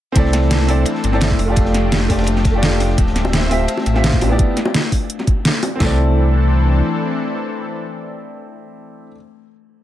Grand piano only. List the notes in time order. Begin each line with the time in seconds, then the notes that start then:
0.12 C4 E4
0.17 A4 D5
0.67 C4 E4 A4 D5
1.12 C4 E4 A4 D5
1.45 A3 F4
1.50 G4 D5
2.08 A3 F4 G4 D5
2.51 A3 F4
2.55 G4 D5
3.49 C4 F4 G4 E5
3.94 C4 F4 G4 E5
4.29 B3 E4 G4 D5
5.75 C4 E4
5.82 A4 D5